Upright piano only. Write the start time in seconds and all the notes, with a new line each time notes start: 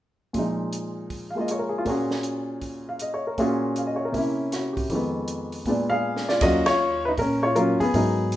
0.33 A#2 F3 G#3
0.38 D#4
1.30 F5
1.35 G#3 A#3 F4
1.40 D#5
1.51 C#5
1.59 A#4
1.69 G#4
1.78 F4
1.85 A#2 A#3 C#4 F4
1.89 F#4 G#4
2.89 F5
3.02 D#5
3.14 C#5
3.27 A#4
3.38 A#2 A#3 C#4 F4 F#4 G#4
3.77 F5
3.87 D#5
3.96 C#5
4.05 A#4
4.12 C3 A#3 C#4
4.17 E4
4.53 F#4
4.73 G4
4.90 F2 D#3 G#3
4.95 B3
5.67 A#2 G#3 B3 D4
5.90 G#4 F5
6.29 F4 D5
6.42 F#3 A#3 C#4 F4 F#4 D#5
6.66 F4 C#5
7.05 D#4 B4
7.19 C#4 A#4
7.43 F4 C#5
7.55 F#3 A#3 C#4 F4 A#4
7.80 B3 G#4
7.95 F#3 B3 D#4 A#4